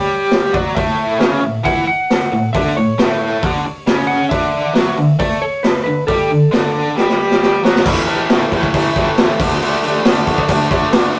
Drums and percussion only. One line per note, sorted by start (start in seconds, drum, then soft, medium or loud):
0.31 snare loud
0.31 open hi-hat medium
0.54 kick loud
0.76 kick loud
0.76 open hi-hat medium
1.20 snare loud
1.20 open hi-hat medium
1.65 kick loud
1.65 open hi-hat medium
2.10 snare loud
2.10 open hi-hat medium
2.55 kick loud
2.55 open hi-hat medium
2.99 snare loud
2.99 open hi-hat medium
3.43 kick loud
3.43 open hi-hat medium
3.87 snare loud
3.87 open hi-hat medium
4.31 kick loud
4.31 open hi-hat medium
4.75 snare loud
4.75 open hi-hat medium
5.20 kick loud
5.20 open hi-hat medium
5.64 snare loud
5.64 open hi-hat medium
6.08 kick loud
6.08 open hi-hat medium
6.53 snare loud
6.53 open hi-hat medium
6.97 snare medium
7.09 snare medium
7.31 snare medium
7.43 snare medium
7.65 snare medium
7.76 snare medium
7.86 kick loud
7.86 crash loud
7.86 crash medium
8.08 crash medium
8.30 snare loud
8.30 crash medium
8.42 snare soft
8.52 kick medium
8.52 crash medium
8.63 kick medium
8.74 kick loud
8.74 crash medium
8.96 kick medium
8.96 crash medium
9.18 snare loud
9.18 crash medium
9.40 kick loud
9.40 crash loud
9.51 snare soft
9.62 crash medium
9.84 crash medium
10.05 snare loud
10.05 crash loud
10.17 snare soft
10.27 kick medium
10.27 crash medium
10.38 kick medium
10.48 kick loud
10.48 crash loud
10.71 kick medium
10.71 crash medium
10.93 snare loud
10.93 crash medium
11.15 crash medium